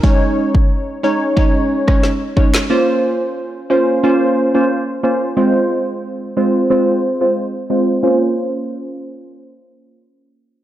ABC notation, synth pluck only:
X:1
M:4/4
L:1/16
Q:1/4=90
K:Bbm
V:1 name="Synth pluck"
[A,DEd]6 [A,DEd]2 [A,DEd]3 [A,DEd] z2 [A,DEd] z | [B,DFc]6 [B,DFc]2 [B,DFc]3 [B,DFc] z2 [B,DFc] z | [A,CFc]6 [A,CFc]2 [A,CFc]3 [A,CFc] z2 [A,CFc] z | [B,DFc]16 |]